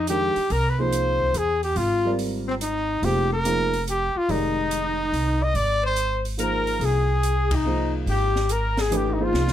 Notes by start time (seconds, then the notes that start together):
Already playing: F2
0.07 D#3 G#3 D4 G4 A#4, closed hi-hat
0.36 muted upright bass stroke, open hi-hat
0.50 C2 A#4, open hi-hat
0.69 B4
0.78 F3 A#3 D#4 G#4 C5
0.92 closed hi-hat
1.20 kick
1.34 E2 G#4, closed hi-hat
1.63 G4, open hi-hat
1.76 G#1 F4, open hi-hat
2.05 G3 C4 F4 A#4 D5
2.19 open hi-hat
2.48 C4
2.61 D#4, closed hi-hat
3.02 F1 F3 A#3 D#4 G4 G#4 C5, open hi-hat
3.32 A#4
3.45 F3 A#3 D#4 G#4 A#4, closed hi-hat
3.73 open hi-hat
3.87 G4, closed hi-hat
4.15 F4, muted upright bass stroke
4.29 F1 D#3 G#3 D#4 G4 A#4 D5, open hi-hat
4.71 closed hi-hat
5.12 C2, open hi-hat
5.43 D#5
5.54 G#1 D5, open hi-hat
5.83 C5
5.96 closed hi-hat
6.25 open hi-hat
6.37 F3 A#3 D#4 G#4 A#4 C5, closed hi-hat
6.43 A#4
6.67 open hi-hat
6.80 C2 G#4, open hi-hat
6.85 G#4
7.23 closed hi-hat
7.51 D#4, kick, ride
7.55 D#4
7.65 F3 A#3 D#4 G#4 C5
8.06 G#1 G4, open hi-hat
8.36 snare
8.49 A#4, closed hi-hat
8.77 G#4, snare, open hi-hat
8.91 E3 A3 D4 G4 B4, closed hi-hat
8.96 G4
9.10 D#4
9.19 F3 A#3 D#4 F4 G#4 C5
9.24 F4
9.33 C2, snare
9.47 snare